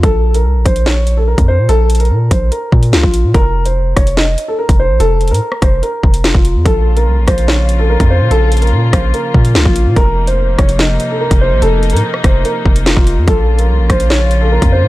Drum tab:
HH |x-----------------x-----------------x-----x-----------------x-----------------x-----------------|x-----------x--x--x--x--------------x-----------x-----------------x-----------------x-----------|x-----------------x-----------------x-----x-----------------x-----------------x-----------------|x-----------x---x---x---------------x-----------x-----------------x-----------------x-----------|
SD |------------------------------------------------o-----------------------------------------------|------------------------------------------------------------------------o-----------------------|------------------------------------r-----------o-----------------------------------------------|------------------------------r-----r-----------------------------------o-----------------------|
BD |o-----------------------------------o-----------------------------------------o-----------------|------------------------------------o-----------------------o-----------------o-----------------|o-----------------------------------o-----------------------------------------o-----------------|------------------------------------o-----------------------o-----------------o-----------------|

HH |x-----------------x-----------------x-----x-----------------x-----------------x-----------------|x-----------x--x--x--x--------------x-----------x-----------------x-----------------x-----------|x-----------------x-----------------x-----x-----------------x-----------------x-----------------|x-----------x---x---x---------------x-----------x-----------------x-----------------x-----------|
SD |------------------------------------r-----------o-----------------------------------------------|------------------------------------r-----------------------------------o-----------------------|------------------------------------r-----------o-----------------------------------------------|------------------------------r-----r-----------------------------------o-----------------------|
BD |o-----------------------------------o-----------------------------------------o-----------------|------------------------------------o-----------------------o-----------------o-----------------|o-----------------------------------o-----------------------------------------o-----------------|------------------------------------o-----------------------o-----------------o-----------------|

HH |x-----------------x-----------------x-----x-----------------x-----------------x-----------------|
SD |------------------------------------r-----------o-----------------------------------------------|
BD |o-----------------------------------o-----------------------------------------o-----------------|